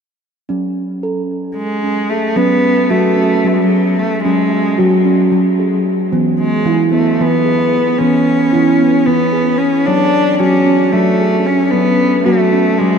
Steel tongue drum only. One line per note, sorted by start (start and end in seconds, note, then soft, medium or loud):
0.49 2.34 F#3 soft
0.49 1.03 C#4 medium
1.03 1.57 A4 medium
1.84 2.11 C#4 soft
2.11 2.38 G#4 soft
2.36 2.84 F#3 medium
2.36 2.91 C#4 medium
2.90 3.38 F#3 medium
2.90 3.18 F#4 medium
3.17 3.71 C#4 medium
3.45 4.15 F#3 medium
3.69 4.24 G#4 medium
4.25 4.73 F#3 medium
4.25 4.79 C#4 medium
4.78 5.26 F#3 medium
4.78 5.05 F#4 medium
5.05 5.59 C#4 medium
5.32 6.03 F#3 medium
5.59 6.13 G#4 medium
6.12 6.59 E3 medium
6.12 6.66 B3 medium
6.65 7.13 E3 medium
6.65 6.93 E4 medium
6.92 7.46 B3 medium
7.20 7.90 E3 medium
7.45 7.99 G#4 soft
7.99 8.47 E3 medium
7.99 8.53 B3 medium
8.53 9.01 E3 medium
8.53 8.80 E4 medium
8.79 9.33 B3 medium
9.08 9.77 E3 medium
9.33 9.86 G#4 soft
9.87 10.34 F#3 medium
9.87 10.40 C#5 medium
10.40 10.87 F#3 medium
10.40 10.67 F#4 medium
10.66 11.20 C#4 medium
10.93 11.64 F#3 medium
11.21 11.74 G#4 medium
11.72 12.20 F#3 medium
11.72 12.26 C#4 medium
12.26 12.74 F#3 medium
12.26 12.53 F#4 medium
12.53 12.98 C#4 medium
12.81 12.98 F#3 medium